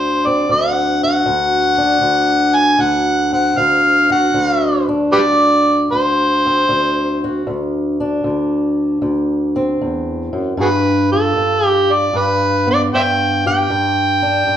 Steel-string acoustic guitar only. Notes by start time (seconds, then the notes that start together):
Already playing: D2 D4
0.27 C4
0.49 D2
1.03 F#4
1.26 D2
1.78 D4
2.01 D2
2.79 D2
3.32 C4
3.57 D2
4.10 F#4
4.34 D2
4.88 D4
5.13 D2
5.92 D2
6.46 C4
6.69 D2
7.24 F#4
7.47 D2
8.00 D4
8.24 D2
9.02 D2
9.56 C4
9.81 E2
10.33 F#2
10.57 G2
11.13 F4
11.36 G2
12.13 G2
12.67 B3
12.94 G2
13.46 G4
13.70 G2
14.22 D4
14.47 G2